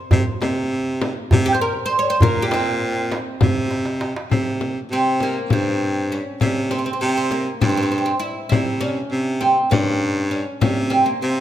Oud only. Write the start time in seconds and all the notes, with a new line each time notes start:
Already playing: C5
1.46 G4
1.54 C5
1.61 A#4
1.86 C5
1.99 C#5
2.10 C5
2.23 A#4
2.42 G4
2.54 C4
4.93 C4
5.23 A#3
5.53 C4
6.12 C#4
6.42 C#4
6.71 C4
6.79 C4
6.86 C4
6.93 C4
7.01 C4
7.09 C4
7.17 C4
7.32 A#3
7.61 C4
7.69 C4
7.77 C4
7.83 C4
7.92 C4
7.98 C4
8.06 C4
8.20 E4
8.49 E4
8.81 C#4
9.41 C4
9.71 C#4
10.31 C#4
10.61 C#4
10.90 C4
11.06 A#3
11.22 C4